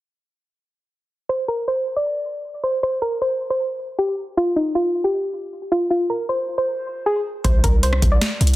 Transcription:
1.29 C5
1.48 A#4
1.68 C5
1.96 D5
2.64 C5
2.83 C5
3.02 A#4
3.22 C5
3.50 C5
3.98 G4
4.37 F4
4.56 D#4
4.75 F4
5.04 G4
5.72 F4
5.90 F4
6.10 A#4
6.29 C5
6.58 C5
7.06 G#4
7.44 C2 C5, kick, closed hi-hat
7.64 C2 A#4, kick, closed hi-hat
7.83 C5, closed hi-hat
7.93 cross-stick
8.02 C2, kick, closed hi-hat
8.12 D5
8.21 snare, closed hi-hat
8.41 C2, closed hi-hat
8.47 closed hi-hat

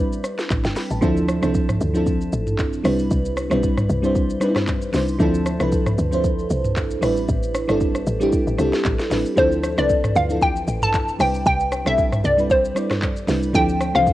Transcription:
Already playing: A1 G3 C4 D4 E4 B4
0.13 shaker
0.24 cross-stick, shaker
0.39 snare, shaker
0.50 A1, kick, clap, shaker
0.64 G1 G5, snare, shaker
0.76 B5, snare, open hi-hat, shaker
0.91 A1 A5, shaker
1.01 D2 F3 C4 D4 E4 A4, kick, shaker
1.17 shaker
1.28 cross-stick, shaker
1.41 C2 F3 C4 D4 E4 A4, cross-stick, shaker
1.55 kick, shaker
1.69 cross-stick, mid tom, shaker
1.81 D2, shaker
1.94 F3 C4 D4 E4 A4, shaker
2.07 kick, shaker
2.21 shaker
2.33 A1, shaker
2.47 mid tom, shaker
2.59 kick, clap, shaker
2.73 shaker
2.83 C2 G3 C4 D4 E4 B4, cross-stick, open hi-hat, shaker
2.99 shaker
3.11 C2, kick, shaker
3.25 shaker
3.37 cross-stick, shaker
3.50 B1 G3 C4 D4 E4 B4, cross-stick, shaker
3.63 kick, shaker
3.77 cross-stick, mid tom, shaker
3.89 C2, shaker
4.02 G3 C4 D4 E4 C5, shaker
4.15 kick, shaker
4.30 shaker
4.40 G3 C4 D4 D#4 B4, cross-stick, shaker
4.49 E4
4.56 cross-stick, snare, mid tom, shaker
4.67 kick, clap, shaker
4.82 shaker
4.92 C2 G3 C4 D4 E4 C5, snare, open hi-hat, shaker
5.08 shaker
5.18 D2 F3 C4 D4 E4 A4, kick, shaker
5.34 shaker
5.46 cross-stick, shaker
5.59 C2 F3 C4 D4 E4 B4, cross-stick, shaker
5.72 kick, shaker
5.86 cross-stick, mid tom, shaker
5.98 D2, shaker
6.11 F3 C4 D4 E4 C5, shaker
6.24 kick, shaker
6.39 shaker
6.50 C2, shaker
6.64 mid tom, shaker
6.76 kick, clap, shaker
6.91 shaker
7.01 A1 G3 C4 D4 E4 B4, cross-stick, open hi-hat, shaker
7.17 shaker
7.29 A1, kick, shaker
7.43 shaker
7.55 cross-stick, shaker
7.67 G1 G3 C4 D4 E4 A4, cross-stick, shaker
7.81 kick, shaker
7.95 cross-stick, shaker
8.07 A1, shaker
8.20 G3 C4 D4 E4 G4, shaker
8.33 kick, shaker
8.47 A1, shaker
8.58 C2 G3 C4 D4 E4 A4, cross-stick, shaker
8.74 snare, shaker
8.85 A1, kick, clap, shaker
8.99 snare, shaker
9.10 A1 G3 C4 D4 E4 B4, snare, open hi-hat, shaker
9.26 shaker
9.36 D2 F3 C4 D4 E4 A4 C5, kick, shaker
9.52 shaker
9.63 cross-stick, shaker
9.76 C2 F3 C4 D4 E4 B4 D5, cross-stick, shaker
9.90 kick, shaker
10.04 cross-stick, mid tom, shaker
10.16 D2 F5, shaker
10.28 E3 C4 D4 E4 A4, shaker
10.35 F3
10.42 G5, kick, shaker
10.56 shaker
10.68 A1, shaker
10.82 A5, mid tom, shaker
10.94 kick, clap, shaker
11.08 shaker
11.18 C2 G3 C4 D4 E4 B4 G5, cross-stick, open hi-hat, shaker
11.34 shaker
11.46 C2 G5, kick, shaker
11.60 shaker
11.72 cross-stick, shaker
11.85 B1 G3 C4 D4 E4 A4 E5, cross-stick, shaker
11.98 kick, shaker
12.13 cross-stick, mid tom, shaker
12.24 C2 D5, shaker
12.37 G3 C4 D4 E4 B4, shaker
12.50 C5, kick, shaker
12.65 shaker
12.75 G3 C4 D4 E4 D5, cross-stick, shaker
12.91 cross-stick, snare, mid tom, shaker
13.02 kick, clap, shaker
13.17 shaker
13.27 C2 G3 C4 D4 E4 B4, snare, open hi-hat, shaker
13.43 shaker
13.53 D2 F3 C4 D4 E4 A4 G5, kick, shaker
13.69 shaker
13.81 cross-stick, shaker
13.94 C2 E3 F3 C4 D4 C5 F5, cross-stick, shaker
14.07 kick, shaker

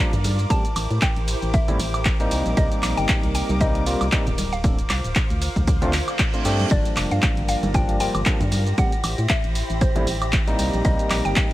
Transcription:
Already playing: F4 A#4 D5 A#5 D6
0.00 F3 G3 A#3 D4
0.13 G2, closed hi-hat, low conga, shaker
0.24 open hi-hat, ride, high conga, shaker
0.39 closed hi-hat, shaker
0.50 G3 A3 C4 E4 G4 C5 A5, kick, closed hi-hat, ride, shaker
0.65 closed hi-hat, shaker
0.76 A1, open hi-hat, ride, high woodblock, shaker
0.91 A2, closed hi-hat, shaker
1.01 G5, kick, clap, closed hi-hat, ride, shaker
1.16 A1, closed hi-hat
1.28 open hi-hat, ride, shaker
1.42 A1, closed hi-hat, shaker
1.54 E5, kick, closed hi-hat, ride, shaker
1.68 G3 A3 C4 E4, closed hi-hat, low conga, shaker
1.79 A1, open hi-hat, ride, shaker
1.94 closed hi-hat, high woodblock, shaker
2.05 kick, clap, closed hi-hat, ride, shaker
2.20 G3 A#3 C4 D#4, closed hi-hat, shaker
2.31 C2 D#4 A#4 D6, open hi-hat, ride, shaker
2.46 A#1, closed hi-hat, shaker
2.57 C2 G3 A#3 C4 D#4 D#5, kick, closed hi-hat, ride, shaker
2.72 closed hi-hat, shaker
2.83 A#1, clap, open hi-hat, ride, high woodblock, shaker
2.97 G1 G5, closed hi-hat, shaker
3.08 kick, clap, closed hi-hat, ride, shaker
3.23 C2, closed hi-hat
3.35 G5, open hi-hat, ride, shaker
3.49 C2, closed hi-hat, high conga, shaker
3.60 G3 A#3 C4 D#4 D#5, kick, closed hi-hat, ride, shaker
3.75 closed hi-hat
3.86 G3 A#3 C4 F4, open hi-hat, ride, shaker
4.01 C2, closed hi-hat, high woodblock, shaker
4.12 G3 A#3 C4 D#4, kick, clap, closed hi-hat, ride, shaker
4.27 D1, closed hi-hat, low conga, shaker
4.38 F4 C5 F5, open hi-hat, ride, high conga, shaker
4.53 F5, closed hi-hat, shaker
4.64 A3 C4 D4 A4, kick, closed hi-hat, ride, shaker
4.79 closed hi-hat, shaker
4.89 C2, clap, open hi-hat, ride, high woodblock, shaker
5.04 D1, closed hi-hat, shaker
5.15 kick, clap, closed hi-hat, ride, shaker
5.30 D2, closed hi-hat, shaker
5.42 open hi-hat, ride, shaker
5.56 D2, kick, closed hi-hat, high conga, shaker
5.67 kick, closed hi-hat, ride, reverse cymbal, shaker
5.82 A3 C4 D4 F4, closed hi-hat, low conga, shaker
5.93 clap, open hi-hat, ride, shaker
6.08 closed hi-hat, high woodblock, shaker
6.19 kick, clap, closed hi-hat, ride, shaker
6.34 A3 C4 D4 F4, closed hi-hat, shaker
6.45 G2 A3 C4 D4 G4, open hi-hat, ride, shaker
6.60 closed hi-hat, high conga, shaker
6.71 G1 F3 G3 D4 G4 A#4 D5 A#6, kick, closed hi-hat, ride, shaker
6.85 closed hi-hat, shaker
6.96 F1, clap, open hi-hat, ride, high woodblock, shaker
7.11 G2 F5, closed hi-hat, shaker
7.22 kick, clap, closed hi-hat, ride, shaker
7.37 G1, closed hi-hat
7.48 F5, open hi-hat, ride, shaker
7.63 G1, closed hi-hat, high conga, shaker
7.74 F3 G3 A#3 D4 G5, kick, closed hi-hat, ride, shaker
7.89 closed hi-hat
8.00 F3 G3 A#3 F4 G5, open hi-hat, ride, shaker
8.15 G1, closed hi-hat, high woodblock, shaker
8.26 F3 G3 A#3 D4, kick, clap, closed hi-hat, ride, shaker
8.41 G2, closed hi-hat, low conga, shaker
8.51 open hi-hat, ride, high conga, shaker
8.66 closed hi-hat, shaker
8.78 G3 A3 C4 E4 G4 C5 F#5 B5, kick, closed hi-hat, ride, shaker
8.92 closed hi-hat, shaker
9.04 A1, open hi-hat, ride, high woodblock, shaker
9.18 A2, closed hi-hat, shaker
9.29 E5, kick, clap, closed hi-hat, ride, shaker
9.44 A1, closed hi-hat
9.55 open hi-hat, ride, shaker
9.70 A1, closed hi-hat, shaker
9.81 C5, kick, closed hi-hat, ride, shaker
9.96 G3 A3 C4 E4, closed hi-hat, low conga, shaker
10.07 A1, open hi-hat, ride, shaker
10.22 closed hi-hat, high woodblock, shaker
10.32 kick, clap, closed hi-hat, ride, shaker
10.47 G3 A#3 C4 D#4, closed hi-hat, shaker
10.59 C2 D#4 A#4 D6, open hi-hat, ride, shaker
10.73 A#1, closed hi-hat, shaker
10.84 C2 G3 A#3 C4 D#4 D#5, kick, closed hi-hat, ride, shaker
10.99 closed hi-hat, shaker
11.10 A#1, clap, open hi-hat, ride, high woodblock, shaker
11.25 G1 G5, closed hi-hat, shaker
11.36 kick, clap, closed hi-hat, ride, shaker

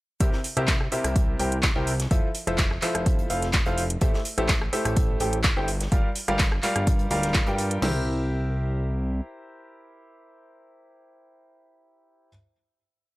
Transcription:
0.20 C2 C3 E4 G4 A#4 C5 E5, kick, closed hi-hat
0.33 snare
0.44 closed hi-hat, open hi-hat
0.57 C2 C3 E4 G4 A#4 C5 E5, cross-stick, closed hi-hat
0.67 kick, snare, clap, closed hi-hat
0.81 cross-stick
0.92 C3 E4 G4 A#4 C5 E5, closed hi-hat, open hi-hat
1.04 C2, cross-stick, closed hi-hat
1.16 kick, closed hi-hat
1.39 C2 C3 E4 G4 A#4 C5 G5, closed hi-hat, open hi-hat
1.52 closed hi-hat
1.63 kick, snare, clap, closed hi-hat
1.76 C2 C3 E4 G4 A#4 C5 G5
1.87 closed hi-hat, open hi-hat
2.00 snare, closed hi-hat
2.11 F1 F3 E4 F4 A4 C5 E5, kick, closed hi-hat
2.35 closed hi-hat, open hi-hat
2.47 F1 F3 E4 F4 A4 C5 E5, cross-stick, closed hi-hat
2.58 kick, snare, clap, closed hi-hat
2.71 cross-stick
2.82 F3 E4 F4 A4 C5 E5, clap, closed hi-hat, open hi-hat
2.95 F1, cross-stick, closed hi-hat
3.06 kick, closed hi-hat
3.19 closed hi-hat
3.30 F1 F3 E4 F4 A4 C5 F5, closed hi-hat, open hi-hat
3.42 snare, closed hi-hat
3.53 kick, snare, clap, closed hi-hat
3.66 F1 F3 E4 F4 A4 C5 F5, closed hi-hat
3.78 closed hi-hat, open hi-hat
3.90 closed hi-hat
4.01 A1 A3 E4 G4 A4 C5 E5, kick, closed hi-hat
4.14 snare
4.25 closed hi-hat, open hi-hat
4.38 A1 A3 E4 G4 A4 C5 E5, cross-stick, closed hi-hat
4.48 kick, snare, clap, closed hi-hat
4.62 cross-stick
4.73 A3 E4 G4 A4 C5 E5, closed hi-hat, open hi-hat
4.85 A1, cross-stick, closed hi-hat
4.96 kick, closed hi-hat
5.20 A1 A3 E4 G4 A4 C5 G5, closed hi-hat, open hi-hat
5.33 closed hi-hat
5.44 kick, snare, clap, closed hi-hat
5.57 G1 E4 G4 A4 C5 G5
5.68 closed hi-hat, open hi-hat
5.80 snare, closed hi-hat
5.92 G1 G3 F4 G4 A#4 D5 F5, kick, closed hi-hat
6.15 closed hi-hat, open hi-hat
6.28 G1 G3 F4 G4 A#4 D5 F5, cross-stick, closed hi-hat
6.39 kick, snare, clap, closed hi-hat
6.52 cross-stick
6.63 G3 F4 G4 A#4 D5 F5, clap, closed hi-hat, open hi-hat
6.76 G1, cross-stick, closed hi-hat
6.87 kick, closed hi-hat
6.99 closed hi-hat
7.10 D1 G3 F4 G4 A#4 D5 F5, closed hi-hat, open hi-hat
7.23 snare, closed hi-hat
7.34 kick, snare, clap, closed hi-hat
7.47 G2 G3 F4 G4 A#4 D5 G5, closed hi-hat
7.58 closed hi-hat, open hi-hat
7.71 closed hi-hat
7.82 C2 E4 G4 A#4 C5 E5, snare, floor tom, crash

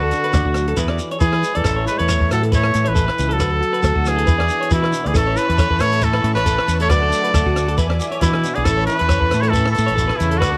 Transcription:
Already playing: D2 D3 F#4
0.03 A4
0.11 D4, closed hi-hat, shekere
0.24 B4, closed hi-hat
0.33 D2 D4 D5, kick, cross-stick, closed hi-hat, shekere
0.45 D2 F#4, kick
0.54 F#3 D4, cross-stick, closed hi-hat, shekere
0.67 A4, closed hi-hat
0.76 E2 E3 B4, kick, closed hi-hat, shekere
0.88 D5, cross-stick
0.99 E4, closed hi-hat, shekere
1.11 C#5, closed hi-hat
1.20 E3 E4 G#4 B4, kick, closed hi-hat, shekere
1.25 E3
1.33 B4, cross-stick
1.42 G#3 E4, closed hi-hat, shekere
1.55 E2 E3 A4 D5, closed hi-hat
1.64 A1 A2 A4, kick, cross-stick, closed hi-hat, shekere
1.76 C#5
1.86 E4 B4, closed hi-hat, shekere
1.90 G#3
1.98 E2 A3 B4 C#5, closed hi-hat
2.09 B4 C#5, kick, cross-stick, closed hi-hat, shekere
2.20 E2, muted clean electric guitar stroke, kick
2.31 A2 E3 F#3 E4 A4, cross-stick, closed hi-hat, shekere
2.43 A4, closed hi-hat
2.52 A3 B4 C#5, kick, closed hi-hat, shekere
2.64 muted clean electric guitar stroke, cross-stick
2.74 A2 E4, closed hi-hat, shekere
2.85 A1 B4 C#5, closed hi-hat
2.91 E3 A4
2.96 E3, kick, closed hi-hat, shekere
3.07 B4, cross-stick
3.18 C#2 C#4, closed hi-hat, shekere
3.29 A4, closed hi-hat
3.33 F#3
3.40 D2 D3 B4, kick, cross-stick, closed hi-hat, shekere
3.52 A4
3.61 F#4, closed hi-hat
3.73 B4, closed hi-hat
3.82 D2 F#4 A4, kick, cross-stick, closed hi-hat, shekere
3.95 D2 F#4, kick
4.05 E3 F#3 F#4 G#4, cross-stick, closed hi-hat, shekere
4.16 A4, closed hi-hat
4.25 E2 E3 B3 D4 B4, kick, closed hi-hat, shekere
4.38 D5, cross-stick
4.49 D4, closed hi-hat, shekere
4.61 C#5, closed hi-hat
4.70 B2 E3 D4 E4 B4, kick, closed hi-hat, shekere
4.82 B4, cross-stick
4.91 B3 D4, closed hi-hat, shekere
5.04 D2 E3 G#4 D5, closed hi-hat
5.13 A1 A2 E3 C#4 E4 A4 A5 C#6, kick, cross-stick, closed hi-hat, shekere
5.17 A4 B5
5.27 C#5
5.35 E3 E4 B4, closed hi-hat, shekere
5.49 E2 B4, closed hi-hat
5.58 A4 C#5, kick, cross-stick, closed hi-hat, shekere
5.70 E2 B4, kick
5.79 A2 E3 A3 E4 C#5, cross-stick, closed hi-hat, shekere
5.92 A4, closed hi-hat
6.01 E3 E4 A4 B4, kick, closed hi-hat, shekere
6.13 B4, cross-stick
6.23 A2 C#4, closed hi-hat
6.35 A1 E3 E4 B4 C#5, closed hi-hat
6.44 A2 A4, kick, closed hi-hat, shekere
6.58 B4, cross-stick
6.66 E2 C#4, closed hi-hat, shekere
6.80 A3 A4 C#5, closed hi-hat
6.88 D2 D3 F#3 A3 D4 F#4 B4 D5 F#5 D6, kick, cross-stick, closed hi-hat, shekere
6.93 A3
7.02 A4
7.09 D4, closed hi-hat, shekere
7.24 B4, closed hi-hat
7.31 D2 F#4, kick, cross-stick, closed hi-hat
7.35 A4, shekere
7.46 D2 F#4, kick
7.54 F#3 D4, cross-stick, closed hi-hat, shekere
7.68 A4, closed hi-hat
7.77 E2 E3 B4 E5 G#5, kick, closed hi-hat, shekere
7.89 D5, cross-stick
7.99 F#4, closed hi-hat, shekere
8.10 C#5, muted nylon-string guitar stroke, closed hi-hat
8.21 B2 E3 D4 E4 B4, kick, closed hi-hat, shekere
8.33 B4, cross-stick
8.43 B3 D4, closed hi-hat, shekere
8.55 B1 E3 G#4 D5, closed hi-hat
8.64 A1 A2 E3 C#4 A4 A5 B5 C#6, kick, cross-stick, closed hi-hat, shekere
8.69 E4
8.77 C#5
8.86 E3 E4 B4, closed hi-hat, shekere
8.99 E2 B4, closed hi-hat
9.09 A4 C#5, kick, cross-stick, closed hi-hat, shekere
9.21 E2 B4, kick
9.31 A2 E3 E4, cross-stick, closed hi-hat, shekere
9.41 A3 A4 C#5, closed hi-hat
9.49 E3 A4 B4
9.53 C#4, kick, closed hi-hat, shekere
9.66 E4, cross-stick
9.71 E3 A4, closed hi-hat
9.77 A2 E4, shekere
9.86 A1 C#5, closed hi-hat
9.96 A4, kick, closed hi-hat, shekere
10.00 B2
10.08 B4, cross-stick
10.16 E2 C#3 E4, closed hi-hat
10.21 C#3, shekere
10.31 A4, closed hi-hat
10.38 D3 F#4 B4
10.42 D2 D3 F#5 A5 D6, kick, cross-stick, closed hi-hat, shekere
10.53 muted clean electric guitar stroke

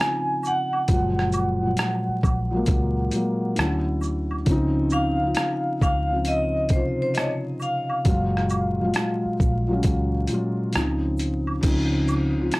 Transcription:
Already playing: C#3 F3 C4 D#4 F4 G#5
0.01 cross-stick, shaker
0.43 high woodblock, shaker
0.45 F#5, shaker
0.73 high woodblock
0.88 F#1 A#2 F#3 G#3, kick, closed hi-hat, shaker
0.93 F3
1.19 cross-stick
1.32 high woodblock, shaker
1.62 A#2 F#3 G#3
1.67 F3
1.77 cross-stick, closed hi-hat, shaker
2.09 muted fingered electric bass stroke
2.23 A#1, kick, high woodblock, shaker
2.51 A#2 F#3 G#3
2.56 A#3
2.66 C#2, kick, closed hi-hat, shaker
3.11 A#2 F#3 G#3, closed hi-hat, shaker
3.16 A#3
3.55 D2 D3 F#3 C#4, cross-stick, closed hi-hat
3.59 E4, shaker
4.01 high woodblock, shaker
4.03 shaker
4.31 high woodblock
4.46 C#2 C#3 F3 C4, kick, closed hi-hat, shaker
4.51 D#4
4.90 high woodblock, shaker
4.92 F5, shaker
5.21 C#3 F3 C4
5.26 F4
5.35 cross-stick, closed hi-hat, shaker
5.81 C#2 F5, kick, high woodblock, shaker
6.09 C#3 F3 C4
6.14 F4
6.25 D#5, closed hi-hat, shaker
6.69 C#3, kick, closed hi-hat, shaker
6.72 C3 F3 C5, shaker
6.76 F4
7.02 C5
7.14 C#5 D#5, cross-stick, closed hi-hat, shaker
7.60 high woodblock, shaker
7.62 F5, shaker
7.90 high woodblock
8.04 F#1 A#2 F#3 G#3, kick, closed hi-hat, shaker
8.09 F4
8.37 cross-stick
8.49 high woodblock, shaker
8.79 A#2 F#3 G#3
8.84 F4
8.94 cross-stick, closed hi-hat, shaker
9.26 muted fingered electric bass stroke
9.40 A#1, kick, shaker
9.68 A#2 F#3 G#3
9.73 C#4
9.83 C#2, kick, closed hi-hat, shaker
10.27 A#2, closed hi-hat, shaker
10.30 F#3 G#3, shaker
10.34 F4
10.72 C#2 C#3 F3 C4, cross-stick, closed hi-hat
10.76 D#4, shaker
11.17 closed hi-hat, shaker
11.19 shaker
11.47 high woodblock
11.61 C#2 C#3 F3 C4, kick, closed hi-hat, crash, shaker
11.66 D#4
12.08 high woodblock, shaker
12.36 C#3 F3 C4
12.42 F4
12.52 cross-stick, closed hi-hat, shaker

